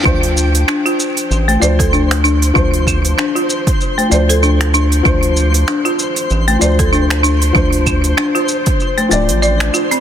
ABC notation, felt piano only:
X:1
M:4/4
L:1/8
Q:"Swing 16ths" 1/4=96
K:Dm
V:1 name="Felt piano"
[F,Dc]4- [F,Dc] [F,Dc]3 | [F,Dc]4- [F,Dc] [F,Dc]3 | [F,Dc]4- [F,Dc] [F,Dc]3 | [F,Dc]4- [F,Dc] [F,Dd]3 |]